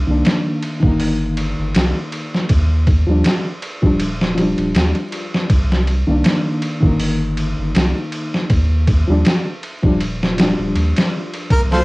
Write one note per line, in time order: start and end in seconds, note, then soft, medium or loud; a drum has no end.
0.07 0.23 C2 loud
0.07 0.77 D#3 medium
0.07 0.78 A#3 medium
0.07 0.79 D4 medium
0.25 snare loud
0.25 ride medium
0.62 ride medium
0.80 1.54 G1 medium
0.80 2.46 D#3 medium
0.80 kick medium
0.84 2.48 A#3 medium
0.84 2.50 D#4 medium
1.00 open hi-hat medium
1.37 ride medium
1.58 1.73 G1 medium
1.75 1.93 C2 medium
1.75 snare loud
1.75 ride medium
2.12 ride medium
2.34 snare soft
2.49 3.04 D#2 loud
2.49 kick medium
2.49 ride medium
2.87 kick medium
2.87 ride medium
3.07 3.23 D#2 medium
3.07 3.22 F3 medium
3.07 3.23 G3 medium
3.11 3.24 D4 medium
3.24 snare loud
3.24 ride medium
3.62 ride medium
3.82 4.54 D#1 medium
3.82 3.97 F3 medium
3.82 3.98 G3 medium
3.82 3.99 D4 medium
3.82 kick medium
4.00 ride medium
4.21 snare medium
4.35 5.46 F3 medium
4.35 5.48 G3 medium
4.35 ride medium
4.42 5.50 D4 medium
4.58 4.73 D#1 medium
4.58 ride soft
4.75 4.93 D#2 medium
4.75 snare loud
4.75 ride medium
4.95 ride soft
5.12 ride medium
5.34 snare soft
5.50 6.04 C2 loud
5.50 kick loud
5.50 ride medium
5.72 snare soft
5.87 ride medium
6.07 6.23 C2 medium
6.07 6.77 D#3 medium
6.07 6.78 A#3 medium
6.07 6.79 D4 medium
6.24 snare loud
6.24 ride medium
6.62 ride medium
6.80 7.54 G1 medium
6.80 8.47 D#3 medium
6.80 8.48 A#3 medium
6.80 kick medium
6.88 8.50 D#4 medium
7.00 open hi-hat medium
7.37 ride medium
7.58 7.73 G1 medium
7.75 7.93 C2 medium
7.75 snare loud
7.75 ride medium
8.12 ride medium
8.34 snare soft
8.50 9.04 D#2 loud
8.50 kick loud
8.50 ride medium
8.87 kick medium
8.87 ride medium
9.07 9.23 D#2 loud
9.07 9.22 F3 medium
9.07 9.23 G3 medium
9.07 9.24 D4 loud
9.25 snare loud
9.25 ride medium
9.63 ride medium
9.82 10.54 D#1 medium
9.82 9.97 F3 medium
9.82 9.98 G3 medium
9.82 9.99 D4 medium
9.82 kick medium
10.00 ride medium
10.23 snare medium
10.34 11.46 F3 medium
10.34 11.48 G3 medium
10.34 ride medium
10.40 11.50 D4 medium
10.40 snare loud
10.58 10.73 D#1 medium
10.75 10.93 D#2 medium
10.75 ride medium
10.96 snare loud
10.96 ride medium
11.33 ride medium
11.49 11.85 C2 loud
11.49 11.85 A#3 medium
11.49 11.61 A#4 medium
11.49 kick medium
11.49 ride medium
11.72 11.81 F4 medium
11.72 11.79 A4 medium
11.72 11.85 C5 medium
11.72 snare soft